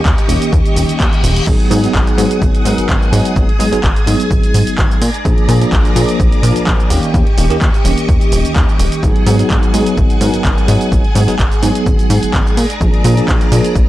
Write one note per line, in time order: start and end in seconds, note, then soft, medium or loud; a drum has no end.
0.00 1.45 G4 medium
0.00 1.45 D#5 medium
0.00 1.45 C#6 medium
0.05 0.14 D#2 loud
0.05 kick loud
0.05 clap loud
0.05 shaker soft
0.18 closed hi-hat medium
0.18 shaker soft
0.28 0.38 D#1 loud
0.28 1.44 D#3 medium
0.28 1.44 A#3 medium
0.28 1.45 C#4 medium
0.28 1.45 G4 medium
0.28 open hi-hat loud
0.28 shaker medium
0.42 closed hi-hat medium
0.42 shaker soft
0.53 0.61 D#2 loud
0.53 kick loud
0.53 reverse cymbal medium
0.53 shaker soft
0.66 closed hi-hat medium
0.66 shaker soft
0.76 0.85 D#1 loud
0.76 open hi-hat loud
0.76 shaker medium
0.89 0.98 D#2 soft
0.89 closed hi-hat medium
0.89 shaker soft
1.00 1.09 D#2 medium
1.00 kick loud
1.00 clap loud
1.00 shaker soft
1.13 closed hi-hat soft
1.13 shaker soft
1.24 1.40 D#1 loud
1.24 open hi-hat loud
1.24 shaker medium
1.36 closed hi-hat medium
1.36 shaker soft
1.47 1.56 G#1 loud
1.47 1.68 F#3 medium
1.47 1.68 B3 medium
1.47 1.68 D#4 medium
1.47 4.98 G#4 medium
1.47 1.68 G#4 medium
1.47 3.34 F#5 medium
1.47 4.98 D#6 medium
1.47 kick loud
1.47 crash medium
1.47 shaker soft
1.60 closed hi-hat soft
1.70 1.87 G#2 medium
1.70 1.80 F#3 medium
1.70 1.80 B3 medium
1.70 1.80 D#4 medium
1.70 1.80 G#4 loud
1.70 open hi-hat loud
1.70 shaker medium
1.83 2.15 F#3 medium
1.83 2.15 B3 medium
1.83 2.15 D#4 medium
1.83 2.16 G#4 medium
1.83 closed hi-hat medium
1.83 shaker soft
1.94 2.03 G#1 loud
1.94 kick loud
1.94 clap loud
1.94 shaker soft
2.07 closed hi-hat medium
2.07 shaker soft
2.17 2.27 G#2 loud
2.17 2.62 F#3 medium
2.17 2.62 B3 medium
2.17 2.63 D#4 medium
2.17 2.63 G#4 medium
2.17 open hi-hat loud
2.17 shaker medium
2.31 closed hi-hat medium
2.31 shaker soft
2.42 2.50 G#1 medium
2.42 kick loud
2.42 shaker soft
2.55 closed hi-hat medium
2.55 shaker soft
2.65 2.74 G#2 medium
2.65 3.10 F#3 medium
2.65 3.10 B3 medium
2.65 3.10 D#4 medium
2.65 3.10 A#4 medium
2.65 open hi-hat loud
2.65 shaker medium
2.78 2.87 G#1 soft
2.78 closed hi-hat medium
2.78 shaker soft
2.89 2.98 G#1 medium
2.89 kick loud
2.89 clap loud
2.89 shaker soft
3.02 shaker soft
3.12 3.21 G#2 loud
3.12 3.33 F#3 loud
3.12 3.33 B3 medium
3.12 3.34 D#4 medium
3.12 3.34 G#4 loud
3.12 open hi-hat loud
3.12 shaker medium
3.25 closed hi-hat medium
3.25 shaker soft
3.36 3.45 G#1 loud
3.36 3.47 F#3 medium
3.36 3.47 B3 medium
3.36 3.47 D#4 medium
3.36 3.47 G#4 medium
3.36 5.00 G#5 medium
3.36 kick loud
3.36 shaker soft
3.49 closed hi-hat soft
3.59 3.72 G#2 medium
3.59 3.66 F#3 loud
3.59 3.66 B3 medium
3.59 3.67 D#4 medium
3.59 3.67 G#4 loud
3.59 open hi-hat loud
3.59 shaker medium
3.72 3.81 G#1 soft
3.72 3.78 F#3 loud
3.72 3.78 B3 medium
3.72 3.78 D#4 medium
3.72 3.79 G#4 loud
3.72 closed hi-hat medium
3.72 shaker soft
3.83 3.92 G#1 loud
3.83 kick loud
3.83 clap loud
3.83 shaker soft
3.96 closed hi-hat medium
3.96 shaker soft
4.06 4.16 G#2 loud
4.06 5.00 F#3 medium
4.06 5.00 B3 medium
4.06 5.00 D#4 medium
4.06 5.01 G#4 medium
4.06 open hi-hat loud
4.06 shaker medium
4.20 closed hi-hat medium
4.20 shaker soft
4.31 4.39 G#1 medium
4.31 kick loud
4.31 shaker soft
4.43 closed hi-hat medium
4.43 shaker soft
4.54 4.63 G#2 medium
4.54 open hi-hat loud
4.54 shaker medium
4.67 4.76 G#1 soft
4.67 closed hi-hat medium
4.67 shaker soft
4.78 4.87 G#1 medium
4.78 kick loud
4.78 clap loud
4.78 shaker soft
4.91 shaker soft
5.01 5.10 A#2 loud
5.01 6.89 G#4 medium
5.01 6.89 D5 medium
5.01 6.89 A#5 medium
5.01 open hi-hat loud
5.01 shaker medium
5.14 closed hi-hat medium
5.14 shaker soft
5.25 5.34 A#1 loud
5.25 5.46 F3 medium
5.25 5.46 A#3 medium
5.25 5.46 D4 medium
5.25 5.46 G#4 loud
5.25 kick loud
5.25 shaker soft
5.38 closed hi-hat soft
5.48 5.65 A#2 loud
5.48 5.58 F3 medium
5.48 5.58 A#3 medium
5.48 5.58 D4 medium
5.48 5.58 G#4 loud
5.48 open hi-hat loud
5.48 shaker medium
5.61 5.93 F3 medium
5.61 5.93 A#3 medium
5.61 5.93 D4 medium
5.61 5.94 G#4 medium
5.61 closed hi-hat medium
5.61 shaker soft
5.72 5.81 A#1 medium
5.72 kick loud
5.72 clap loud
5.72 shaker soft
5.85 closed hi-hat medium
5.85 shaker soft
5.95 6.05 A#2 loud
5.95 6.40 F3 medium
5.95 6.41 A#3 medium
5.95 6.41 D4 medium
5.95 6.41 G#4 medium
5.95 open hi-hat loud
5.95 shaker medium
6.09 closed hi-hat medium
6.09 shaker soft
6.20 6.28 A#1 medium
6.20 kick loud
6.20 shaker soft
6.32 closed hi-hat medium
6.32 shaker soft
6.43 6.52 A#2 medium
6.43 6.88 F3 medium
6.43 6.88 A#3 medium
6.43 6.88 D4 medium
6.43 6.88 A#4 medium
6.43 open hi-hat loud
6.43 shaker medium
6.56 6.65 A#1 soft
6.56 closed hi-hat medium
6.56 shaker soft
6.67 6.75 A#1 medium
6.67 kick loud
6.67 clap loud
6.67 shaker soft
6.80 shaker soft
6.90 6.99 D#1 loud
6.90 7.11 D#3 medium
6.90 7.11 A#3 medium
6.90 7.11 C#4 medium
6.90 9.01 G4 medium
6.90 7.12 G4 loud
6.90 9.01 D#5 medium
6.90 9.01 C#6 medium
6.90 open hi-hat loud
6.90 shaker medium
7.03 closed hi-hat medium
7.03 shaker soft
7.13 7.23 D#2 loud
7.13 7.25 D#3 medium
7.13 7.25 A#3 medium
7.13 7.25 C#4 medium
7.13 7.25 G4 medium
7.13 kick loud
7.13 shaker soft
7.27 closed hi-hat soft
7.37 7.50 D#1 loud
7.37 7.44 D#3 loud
7.37 7.45 A#3 medium
7.37 7.45 C#4 medium
7.37 7.45 G4 loud
7.37 open hi-hat loud
7.37 shaker medium
7.50 7.59 D#2 soft
7.50 7.56 D#3 loud
7.50 7.56 A#3 medium
7.50 7.56 C#4 medium
7.50 7.56 G4 loud
7.50 closed hi-hat medium
7.50 shaker soft
7.61 7.70 D#2 loud
7.61 kick loud
7.61 clap loud
7.61 shaker soft
7.74 closed hi-hat medium
7.74 shaker soft
7.84 7.94 D#1 loud
7.84 9.00 D#3 medium
7.84 9.00 A#3 medium
7.84 9.01 C#4 medium
7.84 9.01 G4 medium
7.84 open hi-hat loud
7.84 shaker medium
7.98 closed hi-hat medium
7.98 shaker soft
8.09 8.17 D#2 medium
8.09 kick loud
8.09 shaker soft
8.21 closed hi-hat medium
8.21 shaker soft
8.32 8.44 D#1 medium
8.32 open hi-hat loud
8.32 shaker medium
8.45 8.54 D#2 soft
8.45 closed hi-hat medium
8.45 shaker soft
8.56 8.64 D#2 medium
8.56 kick loud
8.56 clap loud
8.56 shaker soft
8.69 shaker soft
8.79 8.88 D#1 loud
8.79 open hi-hat loud
8.79 shaker medium
8.92 closed hi-hat medium
8.92 shaker soft
9.03 9.12 G#1 loud
9.03 9.24 F#3 medium
9.03 9.24 B3 medium
9.03 9.24 D#4 medium
9.03 13.89 G#4 medium
9.03 9.24 G#4 loud
9.03 12.54 F#5 medium
9.03 12.54 G#5 medium
9.03 kick loud
9.03 shaker soft
9.16 closed hi-hat soft
9.26 9.43 G#2 loud
9.26 9.36 F#3 medium
9.26 9.36 B3 medium
9.26 9.36 D#4 medium
9.26 9.37 G#4 loud
9.26 open hi-hat loud
9.26 shaker medium
9.39 9.71 F#3 medium
9.39 9.71 B3 medium
9.39 9.71 D#4 medium
9.39 9.71 G#4 medium
9.39 closed hi-hat medium
9.39 shaker soft
9.50 9.59 G#1 loud
9.50 kick loud
9.50 clap loud
9.50 shaker soft
9.63 closed hi-hat medium
9.63 shaker soft
9.73 9.82 G#2 loud
9.73 10.18 F#3 medium
9.73 10.18 B3 medium
9.73 10.19 D#4 medium
9.73 10.19 G#4 medium
9.73 open hi-hat loud
9.73 shaker medium
9.86 closed hi-hat medium
9.86 shaker soft
9.97 10.06 G#1 medium
9.97 kick loud
9.97 shaker soft
10.10 closed hi-hat soft
10.10 shaker soft
10.20 10.30 G#2 medium
10.20 10.65 F#3 medium
10.20 10.66 B3 medium
10.20 10.66 D#4 medium
10.20 10.66 A#4 medium
10.20 open hi-hat loud
10.20 shaker medium
10.34 10.43 G#1 soft
10.34 closed hi-hat medium
10.34 shaker soft
10.45 10.53 G#1 medium
10.45 kick loud
10.45 clap loud
10.45 shaker soft
10.58 shaker soft
10.68 10.77 G#2 loud
10.68 10.89 F#3 medium
10.68 10.89 B3 medium
10.68 10.89 D#4 medium
10.68 10.89 G#4 loud
10.68 open hi-hat loud
10.68 shaker medium
10.81 closed hi-hat medium
10.81 shaker soft
10.91 11.01 G#1 loud
10.91 11.03 F#3 medium
10.91 11.03 B3 medium
10.91 11.03 D#4 medium
10.91 11.03 G#4 medium
10.91 kick loud
10.91 shaker soft
11.05 closed hi-hat soft
11.15 11.28 G#2 loud
11.15 11.22 F#3 loud
11.15 11.22 B3 medium
11.15 11.22 D#4 medium
11.15 11.23 G#4 loud
11.15 open hi-hat loud
11.15 shaker medium
11.28 11.37 G#1 soft
11.28 11.34 F#3 loud
11.28 11.34 B3 medium
11.28 11.34 D#4 medium
11.28 11.34 G#4 loud
11.28 closed hi-hat medium
11.28 shaker soft
11.39 11.48 G#1 loud
11.39 kick loud
11.39 clap loud
11.39 shaker soft
11.52 closed hi-hat medium
11.52 shaker soft
11.62 11.71 G#2 loud
11.62 12.56 F#3 medium
11.62 12.56 B3 medium
11.62 12.56 D#4 medium
11.62 12.56 G#4 medium
11.62 open hi-hat loud
11.62 shaker medium
11.75 closed hi-hat medium
11.75 shaker soft
11.86 11.95 G#1 medium
11.86 kick loud
11.86 shaker soft
11.99 closed hi-hat medium
11.99 shaker soft
12.10 12.19 G#2 medium
12.10 open hi-hat loud
12.10 shaker medium
12.23 12.32 G#1 soft
12.23 closed hi-hat medium
12.23 shaker soft
12.34 12.42 G#1 medium
12.34 kick loud
12.34 clap loud
12.34 shaker soft
12.47 shaker soft
12.57 12.66 A#2 loud
12.57 13.89 D5 medium
12.57 13.89 A#5 medium
12.57 open hi-hat loud
12.57 shaker medium
12.70 closed hi-hat medium
12.70 shaker soft
12.80 12.90 A#1 loud
12.80 13.02 F3 medium
12.80 13.02 A#3 medium
12.80 13.02 D4 medium
12.80 13.02 G#4 loud
12.80 kick loud
12.80 shaker medium
12.94 closed hi-hat soft
13.04 13.21 A#2 loud
13.04 13.14 F3 medium
13.04 13.14 A#3 medium
13.04 13.14 D4 medium
13.04 13.14 G#4 loud
13.04 open hi-hat loud
13.04 shaker medium
13.17 13.49 F3 medium
13.17 13.49 A#3 medium
13.17 13.49 D4 medium
13.17 13.50 G#4 medium
13.17 closed hi-hat medium
13.17 shaker soft
13.28 13.37 A#1 loud
13.28 kick loud
13.28 clap loud
13.28 shaker soft
13.41 closed hi-hat medium
13.41 shaker soft
13.52 13.61 A#2 loud
13.52 13.89 F3 medium
13.52 13.89 A#3 medium
13.52 13.89 D4 medium
13.52 13.89 G#4 medium
13.52 open hi-hat loud
13.52 shaker medium
13.65 closed hi-hat medium
13.65 shaker soft
13.75 13.84 A#1 medium
13.75 kick loud
13.75 shaker soft